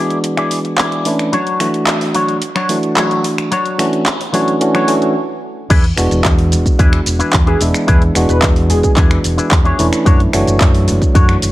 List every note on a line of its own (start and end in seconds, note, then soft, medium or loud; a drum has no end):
0.00 1.02 E3 medium
0.00 1.03 G#3 medium
0.00 1.03 B3 medium
0.00 1.03 D4 medium
0.00 0.17 E4 medium
0.00 1.03 F#4 medium
0.00 0.18 G#4 medium
0.00 0.18 D5 medium
0.10 closed hi-hat soft
0.24 closed hi-hat medium
0.37 0.58 E4 loud
0.37 0.58 G#4 loud
0.37 0.59 D5 loud
0.37 finger snap medium
0.37 closed hi-hat soft
0.51 open hi-hat loud
0.65 closed hi-hat soft
0.78 1.06 E4 medium
0.78 1.06 G#4 medium
0.78 1.06 D5 loud
0.78 clap loud
0.78 open hi-hat medium
0.92 closed hi-hat soft
1.05 1.33 E3 medium
1.05 1.33 A3 medium
1.05 1.33 C#4 medium
1.05 1.33 D4 medium
1.05 1.34 E4 medium
1.05 open hi-hat loud
1.19 finger snap medium
1.19 closed hi-hat soft
1.32 1.67 F#3 loud
1.32 1.67 D4 loud
1.32 1.68 F#4 loud
1.32 1.68 C#5 loud
1.32 closed hi-hat medium
1.47 closed hi-hat soft
1.60 2.40 E3 medium
1.60 2.40 A3 medium
1.60 2.40 D4 medium
1.60 2.41 F#4 medium
1.60 finger snap medium
1.60 open hi-hat loud
1.74 closed hi-hat soft
1.87 clap loud
1.87 closed hi-hat medium
2.01 muted clean electric guitar stroke soft
2.01 open hi-hat medium
2.14 2.35 F#3 medium
2.14 2.36 D4 medium
2.14 2.36 F#4 medium
2.14 2.36 C#5 loud
2.14 open hi-hat loud
2.28 closed hi-hat soft
2.42 closed hi-hat medium
2.55 2.76 F#3 loud
2.55 2.76 D4 loud
2.55 2.77 F#4 loud
2.55 2.77 C#5 loud
2.55 finger snap medium
2.55 closed hi-hat soft
2.68 3.49 E3 medium
2.68 3.49 A3 medium
2.68 3.50 D4 medium
2.68 3.50 F#4 medium
2.68 open hi-hat loud
2.83 closed hi-hat soft
2.96 3.24 F#3 medium
2.96 3.24 D4 medium
2.96 3.25 F#4 medium
2.96 3.25 C#5 loud
2.96 clap loud
2.96 closed hi-hat medium
3.11 closed hi-hat soft
3.24 open hi-hat loud
3.38 finger snap medium
3.38 closed hi-hat soft
3.51 3.86 F#3 loud
3.51 3.86 D4 loud
3.51 3.86 F#4 loud
3.51 3.86 C#5 loud
3.51 closed hi-hat medium
3.66 closed hi-hat soft
3.78 4.04 E3 medium
3.78 4.04 A3 medium
3.78 4.04 C#4 medium
3.78 4.04 D4 medium
3.78 4.04 F#4 medium
3.78 finger snap medium
3.78 open hi-hat loud
3.93 closed hi-hat soft
4.06 clap loud
4.06 closed hi-hat medium
4.20 muted clean electric guitar stroke soft
4.20 open hi-hat medium
4.33 4.58 E3 medium
4.33 4.54 F#3 medium
4.33 4.58 A3 medium
4.33 4.59 C#4 medium
4.33 4.54 D4 medium
4.33 4.59 D4 medium
4.33 4.54 F#4 medium
4.33 4.59 F#4 loud
4.33 4.55 C#5 medium
4.33 open hi-hat loud
4.48 closed hi-hat soft
4.60 4.85 E3 medium
4.60 4.86 A3 medium
4.60 4.86 C#4 medium
4.60 4.86 D4 medium
4.60 4.86 F#4 medium
4.60 closed hi-hat medium
4.74 4.95 F#3 loud
4.74 4.95 D4 loud
4.74 4.95 F#4 loud
4.74 4.96 C#5 loud
4.74 finger snap medium
4.74 closed hi-hat soft
4.87 5.13 E3 medium
4.87 5.13 A3 medium
4.87 5.13 C#4 medium
4.87 5.13 D4 medium
4.87 5.14 F#4 loud
4.87 open hi-hat loud
5.02 closed hi-hat soft
5.70 5.89 E2 loud
5.70 5.84 D4 loud
5.70 5.84 E4 loud
5.70 5.84 G#4 loud
5.70 5.84 B4 loud
5.70 kick loud
5.70 closed hi-hat loud
5.70 crash loud
5.70 shaker soft
5.84 closed hi-hat soft
5.96 6.07 E1 medium
5.96 7.57 E3 medium
5.96 7.57 G#3 medium
5.96 7.58 B3 medium
5.96 7.58 D4 medium
5.96 7.58 F#4 medium
5.96 finger snap medium
5.96 muted clean electric guitar stroke soft
5.96 open hi-hat loud
5.96 shaker medium
6.11 6.20 E1 loud
6.11 closed hi-hat soft
6.11 shaker soft
6.25 6.53 E2 loud
6.25 kick loud
6.25 clap loud
6.25 closed hi-hat loud
6.25 shaker soft
6.39 open hi-hat medium
6.52 6.61 E1 medium
6.52 open hi-hat loud
6.52 shaker medium
6.66 kick medium
6.66 closed hi-hat soft
6.66 shaker soft
6.79 6.98 E2 loud
6.79 6.99 D4 medium
6.79 7.00 E4 medium
6.79 7.00 G#4 medium
6.79 7.00 B4 loud
6.79 kick loud
6.79 closed hi-hat medium
6.79 shaker soft
6.93 finger snap medium
6.93 closed hi-hat soft
7.06 7.19 E1 medium
7.06 open hi-hat loud
7.06 shaker medium
7.19 7.33 D4 medium
7.19 7.33 E4 medium
7.19 7.34 G#4 medium
7.19 7.34 B4 medium
7.19 muted fingered electric bass stroke soft
7.19 closed hi-hat soft
7.19 shaker soft
7.33 7.52 E2 medium
7.33 kick loud
7.33 clap loud
7.33 closed hi-hat medium
7.33 shaker soft
7.46 7.67 D4 medium
7.46 7.68 E4 medium
7.46 7.68 G#4 medium
7.46 7.61 G#4 loud
7.46 7.68 B4 medium
7.46 closed hi-hat soft
7.60 7.70 E1 medium
7.60 8.12 E3 medium
7.60 8.12 G#3 medium
7.60 8.12 B3 medium
7.60 8.12 D4 medium
7.60 8.13 E4 medium
7.60 open hi-hat loud
7.60 shaker medium
7.74 finger snap medium
7.74 closed hi-hat soft
7.74 shaker soft
7.87 8.07 E2 loud
7.87 8.01 D4 loud
7.87 8.02 E4 loud
7.87 8.02 G#4 loud
7.87 8.02 B4 loud
7.87 kick loud
7.87 closed hi-hat medium
7.87 shaker soft
8.02 closed hi-hat soft
8.14 8.25 E1 medium
8.14 9.75 E3 medium
8.14 9.76 G#3 medium
8.14 9.76 B3 medium
8.14 9.76 D4 medium
8.14 9.76 F#4 medium
8.14 finger snap medium
8.14 muted clean electric guitar stroke soft
8.14 open hi-hat loud
8.14 shaker medium
8.29 8.38 E1 loud
8.29 8.43 B4 loud
8.29 closed hi-hat soft
8.29 shaker soft
8.42 8.71 E2 loud
8.42 kick loud
8.42 clap loud
8.42 closed hi-hat medium
8.42 shaker soft
8.56 open hi-hat medium
8.69 8.79 E1 loud
8.69 8.79 G#4 medium
8.69 open hi-hat loud
8.69 shaker medium
8.83 8.92 G#4 medium
8.83 kick medium
8.83 closed hi-hat soft
8.83 shaker soft
8.96 9.16 E2 loud
8.96 9.17 D4 medium
8.96 9.18 E4 medium
8.96 9.18 G#4 medium
8.96 9.18 B4 loud
8.96 kick loud
8.96 clap medium
8.96 closed hi-hat medium
8.96 shaker soft
9.11 finger snap medium
9.11 closed hi-hat soft
9.24 9.37 E1 medium
9.24 open hi-hat loud
9.24 shaker medium
9.37 9.51 D4 medium
9.37 9.52 E4 medium
9.37 9.52 G#4 medium
9.37 9.52 B4 medium
9.37 muted fingered electric bass stroke soft
9.37 closed hi-hat soft
9.37 shaker soft
9.51 9.70 E2 medium
9.51 kick loud
9.51 clap loud
9.51 open hi-hat medium
9.51 shaker soft
9.64 9.85 D4 medium
9.64 9.86 E4 medium
9.64 9.86 G#4 medium
9.64 9.86 C#5 medium
9.64 closed hi-hat soft
9.79 9.88 E1 medium
9.79 10.30 E3 medium
9.79 10.30 A3 medium
9.79 10.30 C#4 medium
9.79 10.30 D4 medium
9.79 10.31 E4 medium
9.79 open hi-hat loud
9.79 shaker medium
9.93 finger snap medium
9.93 closed hi-hat soft
9.93 shaker soft
10.05 10.25 F#2 medium
10.05 10.19 D4 loud
10.05 10.20 F#4 loud
10.05 10.20 A4 loud
10.05 10.20 C#5 loud
10.05 kick loud
10.05 closed hi-hat medium
10.05 shaker soft
10.20 closed hi-hat soft
10.33 10.43 F#1 medium
10.33 11.52 E3 medium
10.33 11.52 A3 medium
10.33 11.52 D4 medium
10.33 11.52 F#4 loud
10.33 11.52 C#5 medium
10.33 finger snap medium
10.33 muted clean electric guitar stroke soft
10.33 open hi-hat loud
10.33 shaker medium
10.47 10.56 F#1 loud
10.47 closed hi-hat soft
10.47 shaker soft
10.61 10.90 F#2 loud
10.61 kick loud
10.61 clap loud
10.61 closed hi-hat medium
10.61 shaker soft
10.75 open hi-hat medium
10.88 10.98 F#1 medium
10.88 open hi-hat loud
10.88 shaker medium
11.02 kick medium
11.02 closed hi-hat soft
11.02 shaker soft
11.14 11.34 F#2 loud
11.14 11.35 D4 medium
11.14 11.36 F#4 medium
11.14 11.36 A4 medium
11.14 11.36 C#5 loud
11.14 kick loud
11.14 closed hi-hat medium
11.14 shaker soft
11.29 finger snap medium
11.29 closed hi-hat soft
11.42 11.52 F#1 medium
11.42 open hi-hat loud
11.42 shaker medium